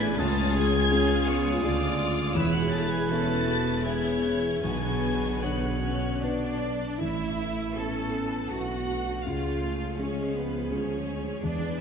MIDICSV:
0, 0, Header, 1, 11, 480
1, 0, Start_track
1, 0, Key_signature, 3, "major"
1, 0, Tempo, 725514
1, 118, Time_signature, 3, 2, 24, 8
1, 1559, Tempo, 746269
1, 2519, Tempo, 784314
1, 4919, Tempo, 743494
1, 5879, Tempo, 722892
1, 7573, End_track
2, 0, Start_track
2, 0, Title_t, "Violin section"
2, 0, Program_c, 0, 48
2, 0, Note_on_c, 0, 92, 94
2, 114, Note_on_c, 0, 93, 105
2, 116, Note_off_c, 0, 92, 0
2, 350, Note_on_c, 0, 92, 125
2, 356, Note_off_c, 0, 93, 0
2, 831, Note_on_c, 0, 85, 100
2, 835, Note_off_c, 0, 92, 0
2, 1064, Note_on_c, 0, 86, 110
2, 1073, Note_off_c, 0, 85, 0
2, 1542, Note_off_c, 0, 86, 0
2, 1547, Note_on_c, 0, 88, 118
2, 1671, Note_off_c, 0, 88, 0
2, 1674, Note_on_c, 0, 90, 96
2, 1789, Note_on_c, 0, 93, 94
2, 1794, Note_off_c, 0, 90, 0
2, 1911, Note_off_c, 0, 93, 0
2, 1915, Note_on_c, 0, 92, 85
2, 2029, Note_on_c, 0, 93, 97
2, 2034, Note_off_c, 0, 92, 0
2, 2515, Note_off_c, 0, 93, 0
2, 2517, Note_on_c, 0, 92, 86
2, 2986, Note_off_c, 0, 92, 0
2, 2993, Note_on_c, 0, 92, 89
2, 3471, Note_off_c, 0, 92, 0
2, 3484, Note_on_c, 0, 90, 69
2, 4208, Note_off_c, 0, 90, 0
2, 4452, Note_on_c, 0, 73, 58
2, 4668, Note_off_c, 0, 73, 0
2, 4684, Note_on_c, 0, 71, 55
2, 5879, Note_off_c, 0, 71, 0
2, 5891, Note_on_c, 0, 73, 57
2, 6356, Note_on_c, 0, 77, 56
2, 6362, Note_off_c, 0, 73, 0
2, 6835, Note_off_c, 0, 77, 0
2, 6837, Note_on_c, 0, 73, 61
2, 7317, Note_off_c, 0, 73, 0
2, 7317, Note_on_c, 0, 71, 62
2, 7573, Note_off_c, 0, 71, 0
2, 7573, End_track
3, 0, Start_track
3, 0, Title_t, "Flute"
3, 0, Program_c, 1, 73
3, 3, Note_on_c, 1, 80, 103
3, 117, Note_off_c, 1, 80, 0
3, 121, Note_on_c, 1, 81, 100
3, 359, Note_on_c, 1, 80, 96
3, 369, Note_off_c, 1, 81, 0
3, 843, Note_on_c, 1, 73, 84
3, 853, Note_off_c, 1, 80, 0
3, 1073, Note_on_c, 1, 74, 90
3, 1083, Note_off_c, 1, 73, 0
3, 1556, Note_off_c, 1, 74, 0
3, 1561, Note_on_c, 1, 76, 94
3, 1673, Note_on_c, 1, 78, 87
3, 1683, Note_off_c, 1, 76, 0
3, 1798, Note_on_c, 1, 81, 98
3, 1807, Note_off_c, 1, 78, 0
3, 1911, Note_on_c, 1, 80, 84
3, 1920, Note_off_c, 1, 81, 0
3, 2030, Note_on_c, 1, 81, 97
3, 2040, Note_off_c, 1, 80, 0
3, 2513, Note_off_c, 1, 81, 0
3, 2517, Note_on_c, 1, 80, 64
3, 2821, Note_off_c, 1, 80, 0
3, 2999, Note_on_c, 1, 80, 93
3, 3485, Note_on_c, 1, 78, 69
3, 3494, Note_off_c, 1, 80, 0
3, 4208, Note_off_c, 1, 78, 0
3, 7573, End_track
4, 0, Start_track
4, 0, Title_t, "Violin section"
4, 0, Program_c, 2, 48
4, 0, Note_on_c, 2, 69, 90
4, 0, Note_on_c, 2, 74, 85
4, 97, Note_off_c, 2, 74, 0
4, 112, Note_on_c, 2, 73, 70
4, 113, Note_on_c, 2, 68, 84
4, 116, Note_off_c, 2, 69, 0
4, 587, Note_off_c, 2, 68, 0
4, 596, Note_off_c, 2, 73, 0
4, 597, Note_on_c, 2, 77, 71
4, 599, Note_on_c, 2, 68, 74
4, 1068, Note_off_c, 2, 68, 0
4, 1068, Note_off_c, 2, 77, 0
4, 1074, Note_on_c, 2, 65, 86
4, 1075, Note_on_c, 2, 77, 84
4, 1545, Note_on_c, 2, 64, 69
4, 1545, Note_on_c, 2, 73, 75
4, 1547, Note_off_c, 2, 77, 0
4, 1556, Note_off_c, 2, 65, 0
4, 2016, Note_off_c, 2, 64, 0
4, 2024, Note_on_c, 2, 64, 76
4, 2026, Note_on_c, 2, 71, 61
4, 2028, Note_off_c, 2, 73, 0
4, 2514, Note_off_c, 2, 71, 0
4, 2517, Note_on_c, 2, 73, 73
4, 2974, Note_off_c, 2, 64, 0
4, 2998, Note_off_c, 2, 73, 0
4, 3000, Note_on_c, 2, 66, 65
4, 3001, Note_on_c, 2, 71, 69
4, 3712, Note_off_c, 2, 71, 0
4, 3726, Note_off_c, 2, 66, 0
4, 3726, Note_on_c, 2, 73, 63
4, 3950, Note_off_c, 2, 73, 0
4, 3973, Note_on_c, 2, 74, 82
4, 4438, Note_off_c, 2, 74, 0
4, 4448, Note_on_c, 2, 76, 73
4, 4919, Note_off_c, 2, 76, 0
4, 4924, Note_on_c, 2, 81, 71
4, 5402, Note_off_c, 2, 81, 0
4, 5404, Note_on_c, 2, 78, 88
4, 5871, Note_on_c, 2, 77, 62
4, 5880, Note_off_c, 2, 78, 0
4, 6349, Note_on_c, 2, 73, 58
4, 6352, Note_off_c, 2, 77, 0
4, 6586, Note_off_c, 2, 73, 0
4, 6595, Note_on_c, 2, 71, 61
4, 6835, Note_off_c, 2, 71, 0
4, 6835, Note_on_c, 2, 73, 59
4, 7313, Note_on_c, 2, 74, 69
4, 7316, Note_off_c, 2, 73, 0
4, 7556, Note_off_c, 2, 74, 0
4, 7573, End_track
5, 0, Start_track
5, 0, Title_t, "Oboe"
5, 0, Program_c, 3, 68
5, 0, Note_on_c, 3, 71, 88
5, 126, Note_on_c, 3, 68, 90
5, 135, Note_off_c, 3, 71, 0
5, 1563, Note_on_c, 3, 71, 81
5, 1573, Note_off_c, 3, 68, 0
5, 2511, Note_off_c, 3, 71, 0
5, 2515, Note_on_c, 3, 71, 61
5, 2820, Note_off_c, 3, 71, 0
5, 2992, Note_on_c, 3, 73, 66
5, 3456, Note_off_c, 3, 73, 0
5, 3485, Note_on_c, 3, 73, 69
5, 4226, Note_off_c, 3, 73, 0
5, 7573, End_track
6, 0, Start_track
6, 0, Title_t, "French horn section"
6, 0, Program_c, 4, 60
6, 0, Note_on_c, 4, 68, 95
6, 115, Note_on_c, 4, 57, 93
6, 116, Note_off_c, 4, 68, 0
6, 356, Note_off_c, 4, 57, 0
6, 361, Note_on_c, 4, 68, 105
6, 840, Note_off_c, 4, 68, 0
6, 841, Note_on_c, 4, 61, 89
6, 1074, Note_off_c, 4, 61, 0
6, 1083, Note_on_c, 4, 74, 83
6, 1554, Note_on_c, 4, 64, 86
6, 1561, Note_off_c, 4, 74, 0
6, 1674, Note_off_c, 4, 64, 0
6, 1681, Note_on_c, 4, 66, 74
6, 1795, Note_off_c, 4, 66, 0
6, 1802, Note_on_c, 4, 69, 91
6, 1915, Note_on_c, 4, 68, 87
6, 1918, Note_off_c, 4, 69, 0
6, 2034, Note_off_c, 4, 68, 0
6, 2034, Note_on_c, 4, 69, 105
6, 2518, Note_off_c, 4, 69, 0
6, 2518, Note_on_c, 4, 68, 80
6, 2985, Note_off_c, 4, 68, 0
6, 2992, Note_on_c, 4, 68, 83
6, 3471, Note_off_c, 4, 68, 0
6, 3489, Note_on_c, 4, 66, 71
6, 4210, Note_off_c, 4, 66, 0
6, 4444, Note_on_c, 4, 57, 65
6, 4893, Note_off_c, 4, 57, 0
6, 4910, Note_on_c, 4, 61, 82
6, 5395, Note_off_c, 4, 61, 0
6, 5401, Note_on_c, 4, 59, 58
6, 5634, Note_on_c, 4, 57, 60
6, 5640, Note_off_c, 4, 59, 0
6, 5867, Note_on_c, 4, 68, 58
6, 5875, Note_off_c, 4, 57, 0
6, 6108, Note_off_c, 4, 68, 0
6, 6113, Note_on_c, 4, 57, 63
6, 6348, Note_off_c, 4, 57, 0
6, 6360, Note_on_c, 4, 56, 68
6, 6837, Note_off_c, 4, 56, 0
6, 6840, Note_on_c, 4, 53, 57
6, 7078, Note_off_c, 4, 53, 0
6, 7080, Note_on_c, 4, 56, 56
6, 7318, Note_off_c, 4, 56, 0
6, 7323, Note_on_c, 4, 59, 56
6, 7573, Note_off_c, 4, 59, 0
6, 7573, End_track
7, 0, Start_track
7, 0, Title_t, "Clarinet"
7, 0, Program_c, 5, 71
7, 0, Note_on_c, 5, 64, 75
7, 119, Note_on_c, 5, 65, 96
7, 129, Note_off_c, 5, 64, 0
7, 1547, Note_off_c, 5, 65, 0
7, 1551, Note_on_c, 5, 64, 93
7, 2495, Note_off_c, 5, 64, 0
7, 2515, Note_on_c, 5, 64, 63
7, 2821, Note_off_c, 5, 64, 0
7, 2993, Note_on_c, 5, 62, 72
7, 3457, Note_off_c, 5, 62, 0
7, 3484, Note_on_c, 5, 59, 60
7, 3708, Note_off_c, 5, 59, 0
7, 3732, Note_on_c, 5, 61, 67
7, 3979, Note_on_c, 5, 62, 69
7, 3988, Note_off_c, 5, 61, 0
7, 4451, Note_off_c, 5, 62, 0
7, 4454, Note_on_c, 5, 64, 80
7, 4923, Note_on_c, 5, 69, 69
7, 4932, Note_off_c, 5, 64, 0
7, 5400, Note_on_c, 5, 66, 69
7, 5410, Note_off_c, 5, 69, 0
7, 5885, Note_on_c, 5, 65, 68
7, 5895, Note_off_c, 5, 66, 0
7, 6360, Note_on_c, 5, 61, 58
7, 6370, Note_off_c, 5, 65, 0
7, 6603, Note_on_c, 5, 59, 61
7, 6613, Note_off_c, 5, 61, 0
7, 6838, Note_off_c, 5, 59, 0
7, 6842, Note_on_c, 5, 61, 57
7, 7320, Note_on_c, 5, 62, 74
7, 7330, Note_off_c, 5, 61, 0
7, 7573, Note_off_c, 5, 62, 0
7, 7573, End_track
8, 0, Start_track
8, 0, Title_t, "Cello section"
8, 0, Program_c, 6, 48
8, 0, Note_on_c, 6, 45, 109
8, 88, Note_off_c, 6, 45, 0
8, 113, Note_on_c, 6, 37, 98
8, 1065, Note_on_c, 6, 38, 80
8, 1075, Note_off_c, 6, 37, 0
8, 1542, Note_off_c, 6, 38, 0
8, 1549, Note_on_c, 6, 40, 82
8, 2994, Note_off_c, 6, 40, 0
8, 2994, Note_on_c, 6, 47, 72
8, 3721, Note_on_c, 6, 61, 70
8, 3723, Note_off_c, 6, 47, 0
8, 3947, Note_off_c, 6, 61, 0
8, 3964, Note_on_c, 6, 62, 81
8, 4441, Note_on_c, 6, 64, 94
8, 4443, Note_off_c, 6, 62, 0
8, 4914, Note_on_c, 6, 69, 80
8, 4916, Note_off_c, 6, 64, 0
8, 5397, Note_off_c, 6, 69, 0
8, 5400, Note_on_c, 6, 66, 82
8, 5878, Note_off_c, 6, 66, 0
8, 5878, Note_on_c, 6, 65, 77
8, 6349, Note_on_c, 6, 61, 70
8, 6356, Note_off_c, 6, 65, 0
8, 6586, Note_off_c, 6, 61, 0
8, 6594, Note_on_c, 6, 59, 66
8, 6832, Note_on_c, 6, 61, 66
8, 6835, Note_off_c, 6, 59, 0
8, 7314, Note_off_c, 6, 61, 0
8, 7318, Note_on_c, 6, 62, 91
8, 7554, Note_off_c, 6, 62, 0
8, 7573, End_track
9, 0, Start_track
9, 0, Title_t, "Grand piano"
9, 0, Program_c, 7, 0
9, 0, Control_c, 7, 64, 127
9, 0, Note_on_c, 7, 33, 87
9, 0, Note_on_c, 7, 59, 62
9, 0, Note_on_c, 7, 64, 63
9, 0, Note_on_c, 7, 69, 66
9, 91, Note_off_c, 7, 59, 0
9, 94, Note_off_c, 7, 64, 0
9, 95, Note_off_c, 7, 69, 0
9, 122, Note_on_c, 7, 37, 84
9, 129, Control_c, 7, 64, 0
9, 133, Note_off_c, 7, 33, 0
9, 248, Control_c, 7, 64, 127
9, 587, Note_off_c, 7, 37, 0
9, 606, Note_on_c, 7, 61, 60
9, 608, Note_on_c, 7, 65, 60
9, 608, Note_on_c, 7, 68, 64
9, 1054, Note_off_c, 7, 61, 0
9, 1055, Note_off_c, 7, 65, 0
9, 1055, Note_off_c, 7, 68, 0
9, 1077, Note_on_c, 7, 49, 57
9, 1082, Note_on_c, 7, 65, 53
9, 1083, Note_on_c, 7, 68, 66
9, 1532, Note_off_c, 7, 49, 0
9, 1534, Note_off_c, 7, 65, 0
9, 1534, Note_off_c, 7, 68, 0
9, 1556, Note_on_c, 7, 40, 81
9, 1570, Control_c, 7, 64, 0
9, 1662, Control_c, 7, 64, 127
9, 2019, Note_off_c, 7, 40, 0
9, 2041, Note_on_c, 7, 59, 54
9, 2042, Note_on_c, 7, 64, 53
9, 2046, Note_on_c, 7, 76, 63
9, 2495, Note_off_c, 7, 59, 0
9, 2496, Note_off_c, 7, 64, 0
9, 2498, Note_off_c, 7, 76, 0
9, 2522, Note_on_c, 7, 59, 48
9, 2528, Note_on_c, 7, 64, 45
9, 2530, Note_on_c, 7, 76, 46
9, 2975, Note_off_c, 7, 59, 0
9, 2978, Note_off_c, 7, 64, 0
9, 2980, Note_off_c, 7, 76, 0
9, 3007, Note_on_c, 7, 35, 63
9, 3009, Control_c, 7, 64, 0
9, 3109, Control_c, 7, 64, 127
9, 3474, Note_off_c, 7, 35, 0
9, 3490, Note_on_c, 7, 59, 51
9, 3492, Note_on_c, 7, 50, 50
9, 3493, Note_on_c, 7, 73, 49
9, 3945, Note_off_c, 7, 59, 0
9, 3946, Note_off_c, 7, 50, 0
9, 3946, Note_off_c, 7, 73, 0
9, 3976, Note_on_c, 7, 59, 45
9, 3977, Note_on_c, 7, 62, 46
9, 3982, Note_on_c, 7, 71, 53
9, 4425, Note_off_c, 7, 59, 0
9, 4425, Note_off_c, 7, 62, 0
9, 4428, Note_off_c, 7, 71, 0
9, 4453, Note_on_c, 7, 33, 57
9, 4458, Control_c, 7, 64, 0
9, 4575, Control_c, 7, 64, 127
9, 4908, Note_off_c, 7, 33, 0
9, 4925, Note_on_c, 7, 59, 39
9, 4928, Note_on_c, 7, 64, 42
9, 4931, Note_on_c, 7, 69, 51
9, 5377, Note_off_c, 7, 59, 0
9, 5378, Note_off_c, 7, 64, 0
9, 5380, Note_off_c, 7, 69, 0
9, 5406, Note_on_c, 7, 59, 44
9, 5409, Note_on_c, 7, 69, 39
9, 5411, Note_on_c, 7, 64, 39
9, 5855, Note_off_c, 7, 59, 0
9, 5856, Note_off_c, 7, 69, 0
9, 5857, Note_off_c, 7, 64, 0
9, 5883, Note_on_c, 7, 37, 58
9, 5890, Control_c, 7, 64, 0
9, 5991, Control_c, 7, 64, 127
9, 6344, Note_off_c, 7, 37, 0
9, 6364, Note_on_c, 7, 56, 39
9, 6366, Note_on_c, 7, 61, 38
9, 6370, Note_on_c, 7, 68, 43
9, 6813, Note_off_c, 7, 56, 0
9, 6814, Note_off_c, 7, 61, 0
9, 6815, Note_off_c, 7, 68, 0
9, 6842, Note_on_c, 7, 56, 42
9, 6848, Note_on_c, 7, 61, 41
9, 6850, Note_on_c, 7, 68, 49
9, 7293, Note_off_c, 7, 56, 0
9, 7296, Note_off_c, 7, 61, 0
9, 7297, Note_off_c, 7, 68, 0
9, 7325, Note_on_c, 7, 40, 57
9, 7329, Control_c, 7, 64, 0
9, 7435, Control_c, 7, 64, 127
9, 7573, Note_off_c, 7, 40, 0
9, 7573, End_track
10, 0, Start_track
10, 0, Title_t, "Viola section"
10, 0, Program_c, 8, 48
10, 0, Note_on_c, 8, 62, 81
10, 0, Note_on_c, 8, 64, 87
10, 107, Note_off_c, 8, 64, 0
10, 111, Note_on_c, 8, 65, 83
10, 112, Note_on_c, 8, 61, 77
10, 116, Note_off_c, 8, 62, 0
10, 585, Note_off_c, 8, 61, 0
10, 586, Note_off_c, 8, 65, 0
10, 593, Note_on_c, 8, 61, 89
10, 596, Note_on_c, 8, 65, 86
10, 831, Note_off_c, 8, 61, 0
10, 840, Note_on_c, 8, 59, 82
10, 1066, Note_off_c, 8, 65, 0
10, 1078, Note_off_c, 8, 59, 0
10, 1079, Note_on_c, 8, 57, 77
10, 1080, Note_on_c, 8, 65, 73
10, 1316, Note_on_c, 8, 56, 79
10, 1318, Note_off_c, 8, 57, 0
10, 1550, Note_off_c, 8, 65, 0
10, 1551, Note_off_c, 8, 56, 0
10, 1558, Note_on_c, 8, 68, 81
10, 1559, Note_on_c, 8, 56, 80
10, 2025, Note_off_c, 8, 56, 0
10, 2034, Note_off_c, 8, 68, 0
10, 2037, Note_on_c, 8, 61, 81
10, 2037, Note_on_c, 8, 66, 78
10, 2274, Note_on_c, 8, 59, 66
10, 2275, Note_off_c, 8, 61, 0
10, 2510, Note_off_c, 8, 59, 0
10, 2517, Note_on_c, 8, 64, 72
10, 2518, Note_on_c, 8, 59, 70
10, 2519, Note_off_c, 8, 66, 0
10, 2751, Note_off_c, 8, 59, 0
10, 2756, Note_on_c, 8, 61, 75
10, 2997, Note_off_c, 8, 64, 0
10, 2998, Note_off_c, 8, 61, 0
10, 3000, Note_on_c, 8, 50, 71
10, 3000, Note_on_c, 8, 59, 68
10, 4294, Note_off_c, 8, 50, 0
10, 4319, Note_off_c, 8, 59, 0
10, 4454, Note_on_c, 8, 57, 56
10, 4454, Note_on_c, 8, 64, 63
10, 4898, Note_off_c, 8, 57, 0
10, 4920, Note_on_c, 8, 61, 65
10, 5161, Note_off_c, 8, 61, 0
10, 5163, Note_on_c, 8, 59, 58
10, 5378, Note_off_c, 8, 64, 0
10, 5400, Note_off_c, 8, 59, 0
10, 5400, Note_on_c, 8, 57, 59
10, 5402, Note_on_c, 8, 62, 53
10, 5640, Note_off_c, 8, 57, 0
10, 5646, Note_on_c, 8, 57, 57
10, 5879, Note_off_c, 8, 62, 0
10, 5884, Note_on_c, 8, 61, 62
10, 6121, Note_off_c, 8, 61, 0
10, 6122, Note_on_c, 8, 68, 61
10, 6345, Note_off_c, 8, 57, 0
10, 6363, Note_on_c, 8, 53, 63
10, 7315, Note_on_c, 8, 56, 58
10, 7320, Note_off_c, 8, 53, 0
10, 7573, Note_off_c, 8, 56, 0
10, 7573, Note_off_c, 8, 68, 0
10, 7573, End_track
11, 0, Start_track
11, 0, Title_t, "Double bass section"
11, 0, Program_c, 10, 48
11, 0, Note_on_c, 10, 33, 86
11, 90, Note_off_c, 10, 33, 0
11, 114, Note_on_c, 10, 37, 95
11, 1070, Note_on_c, 10, 38, 70
11, 1075, Note_off_c, 10, 37, 0
11, 1545, Note_off_c, 10, 38, 0
11, 1552, Note_on_c, 10, 28, 82
11, 2995, Note_off_c, 10, 28, 0
11, 2998, Note_on_c, 10, 35, 73
11, 4318, Note_off_c, 10, 35, 0
11, 4446, Note_on_c, 10, 33, 67
11, 5374, Note_off_c, 10, 33, 0
11, 5401, Note_on_c, 10, 35, 58
11, 5878, Note_off_c, 10, 35, 0
11, 5878, Note_on_c, 10, 37, 58
11, 6816, Note_off_c, 10, 37, 0
11, 6838, Note_on_c, 10, 38, 54
11, 7317, Note_off_c, 10, 38, 0
11, 7319, Note_on_c, 10, 40, 65
11, 7573, Note_off_c, 10, 40, 0
11, 7573, End_track
0, 0, End_of_file